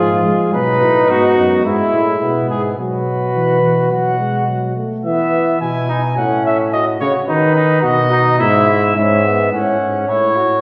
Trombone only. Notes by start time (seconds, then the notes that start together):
Already playing: F3
0.25 G#3
0.53 F#3
1.09 B3
1.65 G#3
2.78 F#3
3.35 E3
3.62 E3
3.90 F#3
4.18 G#3
4.47 F#3
4.76 A3